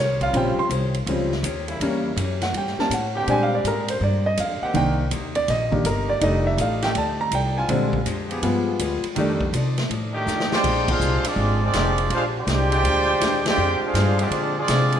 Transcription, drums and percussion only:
0.21 kick, ride
0.34 ride
0.70 hi-hat pedal, ride
0.94 ride
1.07 ride
1.32 snare
1.44 hi-hat pedal, ride
1.68 ride
1.81 ride
2.17 hi-hat pedal, ride
2.42 snare, ride
2.54 ride
2.67 snare
2.79 snare
2.91 hi-hat pedal, ride
3.28 ride
3.65 hi-hat pedal, ride
3.88 ride
4.37 hi-hat pedal, ride
4.75 ride
5.11 hi-hat pedal, ride
5.35 ride
5.48 snare, ride
5.72 kick
5.85 hi-hat pedal, ride
6.21 ride
6.58 hi-hat pedal, ride
6.82 snare, ride
6.95 ride
7.32 hi-hat pedal, ride
7.69 ride
7.93 kick
8.06 hi-hat pedal, ride
8.31 ride
8.43 ride
8.79 hi-hat pedal, ride
9.04 ride
9.16 ride
9.41 kick
9.54 hi-hat pedal, ride
9.78 snare, ride
9.91 ride
10.28 snare, hi-hat pedal
10.40 snare
10.52 snare
10.64 kick, crash
10.88 kick, crash
11.01 hi-hat pedal
11.24 ride
11.73 snare, hi-hat pedal, ride
11.98 ride
12.10 ride
12.47 snare, hi-hat pedal, ride
12.72 ride
12.85 ride
13.21 snare, hi-hat pedal, ride
13.46 snare, ride
13.95 snare, hi-hat pedal, ride
14.19 ride
14.31 ride
14.68 snare, hi-hat pedal, ride
14.92 ride

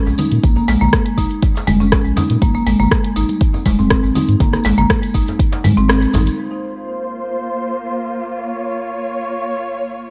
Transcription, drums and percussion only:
0.07 tambourine, djembe tone
0.18 open hi-hat, tambourine, high conga, low conga
0.32 closed hi-hat, tambourine
0.44 kick, closed hi-hat, tambourine, low conga
0.56 tambourine, djembe tone
0.68 open hi-hat, tambourine, djembe slap
0.81 tambourine, low conga
0.93 kick, cross-stick, closed hi-hat, tambourine, djembe tone
1.06 closed hi-hat
1.18 kick, open hi-hat, tambourine
1.31 closed hi-hat, tambourine
1.43 kick, closed hi-hat, tambourine, djembe tone
1.56 tambourine, djembe slap
1.67 open hi-hat, tambourine, high conga, djembe bass, low conga
1.81 tambourine, djembe tone
1.92 kick, cross-stick, closed hi-hat, tambourine, djembe slap
2.05 tambourine
2.16 open hi-hat, tambourine, djembe slap, high conga, low conga, djembe bass
2.30 closed hi-hat, tambourine, djembe tone
2.42 kick, closed hi-hat, tambourine, high conga, low conga
2.55 tambourine
2.67 open hi-hat, tambourine, djembe tone
2.80 tambourine, low conga
2.91 kick, cross-stick, closed hi-hat, tambourine
3.04 closed hi-hat
3.16 open hi-hat, tambourine, djembe tone
3.29 closed hi-hat, tambourine, high conga
3.41 kick, closed hi-hat, tambourine
3.54 tambourine, djembe tone
3.66 kick, open hi-hat, tambourine, djembe slap, high conga
3.79 tambourine, high conga, djembe bass
3.90 kick, cross-stick, closed hi-hat, tambourine
4.04 tambourine, djembe tone
4.15 open hi-hat, tambourine, high conga, low conga
4.29 closed hi-hat, tambourine
4.40 kick, closed hi-hat, tambourine, djembe tone, low conga
4.53 cross-stick, closed hi-hat, tambourine
4.64 open hi-hat, tambourine, djembe slap
4.78 closed hi-hat, tambourine, low conga
4.90 kick, cross-stick, closed hi-hat, tambourine, djembe tone
5.03 closed hi-hat, tambourine
5.14 kick, open hi-hat, tambourine
5.27 closed hi-hat, tambourine, djembe tone
5.39 kick, closed hi-hat, tambourine
5.52 closed hi-hat, tambourine, djembe slap
5.64 open hi-hat, tambourine, high conga, low conga, djembe bass
5.77 closed hi-hat, tambourine, djembe tone
5.89 cross-stick, closed hi-hat, tambourine, djembe slap
6.02 closed hi-hat, tambourine
6.13 open hi-hat, tambourine, djembe slap, high conga, djembe tone, low conga, djembe bass
6.27 closed hi-hat, tambourine

